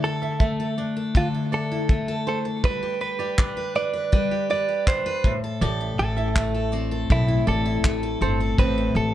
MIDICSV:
0, 0, Header, 1, 6, 480
1, 0, Start_track
1, 0, Tempo, 744417
1, 1700, Time_signature, 4, 2, 24, 8
1, 5894, End_track
2, 0, Start_track
2, 0, Title_t, "Nylon-string guitar"
2, 0, Program_c, 0, 24
2, 141, Note_on_c, 0, 76, 60
2, 248, Note_off_c, 0, 76, 0
2, 256, Note_on_c, 0, 76, 64
2, 486, Note_off_c, 0, 76, 0
2, 501, Note_on_c, 0, 74, 61
2, 614, Note_off_c, 0, 74, 0
2, 980, Note_on_c, 0, 74, 74
2, 1208, Note_off_c, 0, 74, 0
2, 1463, Note_on_c, 0, 72, 68
2, 1576, Note_off_c, 0, 72, 0
2, 1700, Note_on_c, 0, 71, 84
2, 1929, Note_off_c, 0, 71, 0
2, 2056, Note_on_c, 0, 74, 69
2, 2171, Note_off_c, 0, 74, 0
2, 2179, Note_on_c, 0, 74, 74
2, 2408, Note_off_c, 0, 74, 0
2, 2421, Note_on_c, 0, 71, 69
2, 2535, Note_off_c, 0, 71, 0
2, 2900, Note_on_c, 0, 74, 75
2, 3239, Note_off_c, 0, 74, 0
2, 3620, Note_on_c, 0, 74, 83
2, 3848, Note_off_c, 0, 74, 0
2, 3975, Note_on_c, 0, 76, 68
2, 4089, Note_off_c, 0, 76, 0
2, 4097, Note_on_c, 0, 76, 65
2, 4332, Note_off_c, 0, 76, 0
2, 4332, Note_on_c, 0, 74, 68
2, 4450, Note_off_c, 0, 74, 0
2, 4817, Note_on_c, 0, 74, 83
2, 5045, Note_off_c, 0, 74, 0
2, 5300, Note_on_c, 0, 72, 76
2, 5412, Note_off_c, 0, 72, 0
2, 5538, Note_on_c, 0, 60, 93
2, 5765, Note_off_c, 0, 60, 0
2, 5894, End_track
3, 0, Start_track
3, 0, Title_t, "Clean electric guitar"
3, 0, Program_c, 1, 27
3, 26, Note_on_c, 1, 69, 89
3, 477, Note_off_c, 1, 69, 0
3, 756, Note_on_c, 1, 65, 69
3, 818, Note_off_c, 1, 65, 0
3, 994, Note_on_c, 1, 69, 82
3, 1466, Note_off_c, 1, 69, 0
3, 1474, Note_on_c, 1, 69, 71
3, 1537, Note_off_c, 1, 69, 0
3, 1710, Note_on_c, 1, 71, 79
3, 1935, Note_off_c, 1, 71, 0
3, 1943, Note_on_c, 1, 71, 90
3, 2422, Note_off_c, 1, 71, 0
3, 2424, Note_on_c, 1, 74, 98
3, 2899, Note_off_c, 1, 74, 0
3, 2906, Note_on_c, 1, 74, 82
3, 3145, Note_off_c, 1, 74, 0
3, 3147, Note_on_c, 1, 72, 83
3, 3479, Note_off_c, 1, 72, 0
3, 3864, Note_on_c, 1, 69, 93
3, 4316, Note_off_c, 1, 69, 0
3, 4591, Note_on_c, 1, 64, 73
3, 4823, Note_off_c, 1, 64, 0
3, 4826, Note_on_c, 1, 69, 78
3, 5275, Note_off_c, 1, 69, 0
3, 5302, Note_on_c, 1, 69, 73
3, 5539, Note_off_c, 1, 69, 0
3, 5541, Note_on_c, 1, 71, 96
3, 5778, Note_off_c, 1, 71, 0
3, 5781, Note_on_c, 1, 69, 89
3, 5894, Note_off_c, 1, 69, 0
3, 5894, End_track
4, 0, Start_track
4, 0, Title_t, "Steel-string acoustic guitar"
4, 0, Program_c, 2, 25
4, 0, Note_on_c, 2, 50, 83
4, 0, Note_on_c, 2, 57, 66
4, 0, Note_on_c, 2, 64, 48
4, 31, Note_on_c, 2, 69, 55
4, 139, Note_off_c, 2, 64, 0
4, 147, Note_on_c, 2, 64, 51
4, 262, Note_off_c, 2, 57, 0
4, 265, Note_on_c, 2, 57, 62
4, 378, Note_off_c, 2, 69, 0
4, 385, Note_on_c, 2, 69, 54
4, 503, Note_on_c, 2, 62, 52
4, 615, Note_off_c, 2, 69, 0
4, 623, Note_on_c, 2, 69, 54
4, 741, Note_off_c, 2, 69, 0
4, 743, Note_off_c, 2, 50, 0
4, 746, Note_on_c, 2, 50, 75
4, 750, Note_on_c, 2, 69, 59
4, 860, Note_off_c, 2, 64, 0
4, 867, Note_on_c, 2, 64, 49
4, 977, Note_off_c, 2, 69, 0
4, 985, Note_on_c, 2, 69, 59
4, 1098, Note_off_c, 2, 64, 0
4, 1106, Note_on_c, 2, 64, 51
4, 1216, Note_off_c, 2, 57, 0
4, 1224, Note_on_c, 2, 57, 58
4, 1335, Note_off_c, 2, 69, 0
4, 1342, Note_on_c, 2, 69, 57
4, 1460, Note_off_c, 2, 62, 0
4, 1462, Note_on_c, 2, 62, 53
4, 1572, Note_off_c, 2, 69, 0
4, 1580, Note_on_c, 2, 69, 52
4, 1699, Note_off_c, 2, 57, 0
4, 1700, Note_off_c, 2, 69, 0
4, 1702, Note_on_c, 2, 55, 80
4, 1708, Note_on_c, 2, 71, 63
4, 1752, Note_off_c, 2, 64, 0
4, 1822, Note_on_c, 2, 67, 50
4, 1932, Note_off_c, 2, 71, 0
4, 1940, Note_on_c, 2, 71, 53
4, 2053, Note_off_c, 2, 67, 0
4, 2061, Note_on_c, 2, 67, 55
4, 2179, Note_off_c, 2, 62, 0
4, 2182, Note_on_c, 2, 62, 64
4, 2292, Note_off_c, 2, 71, 0
4, 2300, Note_on_c, 2, 71, 52
4, 2413, Note_off_c, 2, 62, 0
4, 2420, Note_on_c, 2, 62, 50
4, 2529, Note_off_c, 2, 71, 0
4, 2537, Note_on_c, 2, 71, 55
4, 2650, Note_off_c, 2, 55, 0
4, 2653, Note_off_c, 2, 71, 0
4, 2658, Note_on_c, 2, 55, 75
4, 2661, Note_on_c, 2, 71, 62
4, 2773, Note_off_c, 2, 67, 0
4, 2781, Note_on_c, 2, 67, 51
4, 2894, Note_off_c, 2, 71, 0
4, 2902, Note_on_c, 2, 71, 65
4, 3003, Note_off_c, 2, 50, 0
4, 3013, Note_off_c, 2, 67, 0
4, 3021, Note_on_c, 2, 67, 50
4, 3132, Note_off_c, 2, 62, 0
4, 3139, Note_on_c, 2, 62, 60
4, 3254, Note_off_c, 2, 71, 0
4, 3262, Note_on_c, 2, 71, 63
4, 3385, Note_on_c, 2, 45, 72
4, 3427, Note_off_c, 2, 55, 0
4, 3428, Note_off_c, 2, 62, 0
4, 3429, Note_off_c, 2, 67, 0
4, 3429, Note_off_c, 2, 71, 0
4, 3506, Note_on_c, 2, 69, 58
4, 3615, Note_off_c, 2, 45, 0
4, 3623, Note_on_c, 2, 45, 85
4, 3624, Note_off_c, 2, 69, 0
4, 3627, Note_on_c, 2, 69, 67
4, 3744, Note_on_c, 2, 64, 47
4, 3861, Note_off_c, 2, 69, 0
4, 3864, Note_on_c, 2, 69, 61
4, 3979, Note_off_c, 2, 64, 0
4, 3982, Note_on_c, 2, 64, 55
4, 4100, Note_on_c, 2, 57, 66
4, 4217, Note_off_c, 2, 69, 0
4, 4220, Note_on_c, 2, 69, 52
4, 4339, Note_on_c, 2, 60, 53
4, 4455, Note_off_c, 2, 69, 0
4, 4458, Note_on_c, 2, 69, 62
4, 4572, Note_off_c, 2, 45, 0
4, 4579, Note_on_c, 2, 45, 78
4, 4582, Note_off_c, 2, 69, 0
4, 4585, Note_on_c, 2, 69, 67
4, 4693, Note_off_c, 2, 64, 0
4, 4696, Note_on_c, 2, 64, 52
4, 4814, Note_off_c, 2, 69, 0
4, 4816, Note_on_c, 2, 69, 63
4, 4934, Note_off_c, 2, 64, 0
4, 4936, Note_on_c, 2, 64, 57
4, 5056, Note_off_c, 2, 57, 0
4, 5059, Note_on_c, 2, 57, 57
4, 5175, Note_off_c, 2, 69, 0
4, 5177, Note_on_c, 2, 69, 63
4, 5289, Note_off_c, 2, 60, 0
4, 5297, Note_on_c, 2, 60, 60
4, 5416, Note_off_c, 2, 69, 0
4, 5419, Note_on_c, 2, 69, 52
4, 5533, Note_off_c, 2, 45, 0
4, 5541, Note_on_c, 2, 45, 79
4, 5542, Note_off_c, 2, 69, 0
4, 5544, Note_on_c, 2, 69, 67
4, 5657, Note_off_c, 2, 64, 0
4, 5659, Note_on_c, 2, 64, 51
4, 5774, Note_off_c, 2, 69, 0
4, 5777, Note_on_c, 2, 69, 64
4, 5894, Note_off_c, 2, 45, 0
4, 5894, Note_off_c, 2, 57, 0
4, 5894, Note_off_c, 2, 60, 0
4, 5894, Note_off_c, 2, 64, 0
4, 5894, Note_off_c, 2, 69, 0
4, 5894, End_track
5, 0, Start_track
5, 0, Title_t, "Upright bass"
5, 0, Program_c, 3, 32
5, 3619, Note_on_c, 3, 33, 102
5, 3816, Note_off_c, 3, 33, 0
5, 3861, Note_on_c, 3, 33, 90
5, 4554, Note_off_c, 3, 33, 0
5, 4579, Note_on_c, 3, 35, 83
5, 4776, Note_off_c, 3, 35, 0
5, 4816, Note_on_c, 3, 33, 88
5, 5014, Note_off_c, 3, 33, 0
5, 5055, Note_on_c, 3, 33, 81
5, 5253, Note_off_c, 3, 33, 0
5, 5293, Note_on_c, 3, 31, 81
5, 5491, Note_off_c, 3, 31, 0
5, 5535, Note_on_c, 3, 33, 101
5, 5732, Note_off_c, 3, 33, 0
5, 5770, Note_on_c, 3, 33, 96
5, 5894, Note_off_c, 3, 33, 0
5, 5894, End_track
6, 0, Start_track
6, 0, Title_t, "Drums"
6, 259, Note_on_c, 9, 36, 98
6, 323, Note_off_c, 9, 36, 0
6, 741, Note_on_c, 9, 36, 94
6, 805, Note_off_c, 9, 36, 0
6, 1220, Note_on_c, 9, 36, 96
6, 1285, Note_off_c, 9, 36, 0
6, 1701, Note_on_c, 9, 36, 94
6, 1766, Note_off_c, 9, 36, 0
6, 2182, Note_on_c, 9, 36, 104
6, 2183, Note_on_c, 9, 39, 89
6, 2246, Note_off_c, 9, 36, 0
6, 2248, Note_off_c, 9, 39, 0
6, 2662, Note_on_c, 9, 36, 100
6, 2727, Note_off_c, 9, 36, 0
6, 3140, Note_on_c, 9, 36, 102
6, 3143, Note_on_c, 9, 39, 83
6, 3205, Note_off_c, 9, 36, 0
6, 3208, Note_off_c, 9, 39, 0
6, 3380, Note_on_c, 9, 36, 91
6, 3445, Note_off_c, 9, 36, 0
6, 4100, Note_on_c, 9, 36, 106
6, 4102, Note_on_c, 9, 39, 95
6, 4164, Note_off_c, 9, 36, 0
6, 4167, Note_off_c, 9, 39, 0
6, 4579, Note_on_c, 9, 36, 99
6, 4644, Note_off_c, 9, 36, 0
6, 5057, Note_on_c, 9, 36, 97
6, 5059, Note_on_c, 9, 39, 95
6, 5121, Note_off_c, 9, 36, 0
6, 5124, Note_off_c, 9, 39, 0
6, 5535, Note_on_c, 9, 36, 95
6, 5600, Note_off_c, 9, 36, 0
6, 5894, End_track
0, 0, End_of_file